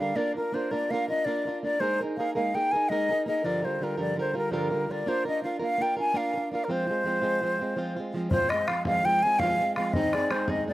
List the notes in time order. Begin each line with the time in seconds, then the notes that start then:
0.00 D3 G3 D4 A#4 F5
0.16 A#3 D4 F4 A#4 D5
0.35 D4 F4 A#4
0.52 A#3 D4 F4 A#4 C5
0.71 A#3 D4 F4 A#4 D5
0.90 A#3 D4 F4 A#4 F5
1.08 D4 F4 A#4 D#5
1.25 A#3 D4 F4 A#4 D5
1.45 D4 F4 A#4
1.63 A#3 D4 F4 A#4 D5
1.80 G#3 A#3 D#4 G#4 A#4 C5
2.01 D#4 G#4 A#4
2.17 A#3 D#4 G#4 A#4 F5
2.35 G#3 A#3 D#4 G#4 A#4 F5
2.54 A#3 D#4 G#4 A#4 G5
2.72 G#4 A#4 G#5
2.76 D#4
2.89 G#3 A#3 D#4 G#4 A#4 D#5
3.09 D#4 G#4 A#4
3.26 A#3 D#4 G#4 A#4 D#5
3.44 G2 D3 F3 G3 F4 A#4 D5
3.62 D3 G3 F4 A#4 C5
3.80 D3 G3 F4 A#4
3.97 G2 D3 F3 G3 F4 A#4 D5
4.16 D3 G3 F4 A#4
4.20 C5
4.34 D3 G3 F4 A#4
4.38 A#4
4.51 G2 D3 F3 G3 F4 A#4
4.70 D3 G3 F4 A#4
4.89 D3 G3 F4 A#4 D5
5.06 A#3 D4 F4 A#4 C5
5.25 D4 F4 A#4 D#5
5.42 A#3 D4 F4 A#4 F5
5.59 A#3 D4 F4 A#4 F5
5.78 A#3 D4 F4 G5
5.82 A#4
5.97 D4 F4 A#4 G#5
6.14 A#3 D4 F4 A#4 F5
6.34 D4 F4 A#4
6.52 A#3 D4 F4 A#4 F5
6.64 A#4
6.68 F3 G#3 C4 F4 C5
6.87 G#3 C4 F4
7.04 F3 G#3 C4 F4
7.21 F3 G#3 C4 F4
7.41 F3 G#3 C4 F4
7.59 G#3 C4 F4
7.76 F3 G#3 C4 F4
7.96 G#3 C4 F4
8.14 F3 G#3 C4 F4
8.31 F3 G#3 C4 F4 C5, bodhran
8.49 C4 F4 D#5, bodhran
8.54 G#3
8.67 F3 G#3 C4 F5, bodhran
8.72 F4
8.85 F3 G#3 C4 F4 F5, bodhran
9.04 F3 G#3 C4 G5, bodhran
9.09 F4
9.22 G#3 C4 F4 G#5
9.39 F3 G#3 C4 F5, bodhran
9.43 F4
9.59 G#3 C4 F4
9.75 F3 G#3 C4 F5, bodhran
9.80 F4
9.93 G#3 C4 D#4 G#4 D#5, bodhran
10.13 D#4 G#4 D5, bodhran
10.18 C4
10.30 G#3 C4 D#4 G#4 C5, bodhran
10.48 G#3 C4 D#4 G#4 D#5, bodhran
10.68 G#3 C4 D5, bodhran